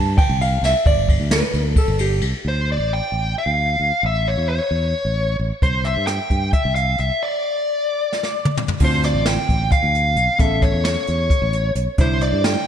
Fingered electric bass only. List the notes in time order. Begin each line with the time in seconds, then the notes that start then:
Already playing: G2
0.29 C2
0.62 C2
0.86 G1
1.20 D2
1.54 D2
1.88 G1
2.21 C2
2.45 D2
2.78 A1
3.12 A1
3.46 D2
3.80 D2
4.03 A1
4.37 E2
4.71 E2
5.05 A1
5.39 A1
5.62 C2
5.97 G2
6.30 G2
6.65 C2
6.99 C2
8.81 D2
9.15 A1
9.49 A1
9.83 D2
10.16 B1
10.39 A1
10.74 E2
11.08 E2
11.42 A1
11.75 B1
11.99 C2
12.33 G2